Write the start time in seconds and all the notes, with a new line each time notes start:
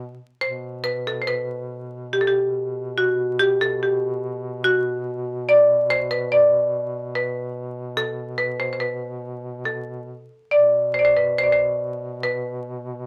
Already playing: B2
0.41 B2 C5
0.84 B4
1.07 A4
1.22 C5
1.27 B4
2.13 G4
2.21 A4
2.27 G4
2.98 F#4
3.39 G4
3.61 A4
3.83 G4
4.64 F#4
5.49 D5
5.90 C5
6.11 B4
6.32 D5
7.15 B4
7.97 A4
8.38 B4
8.60 C5
8.73 C5
8.80 B4
9.65 A4
10.51 B2 D5
10.94 C5
10.99 D5
11.05 C5
11.17 B4
11.38 C5
11.43 D5
11.52 C5
12.23 B4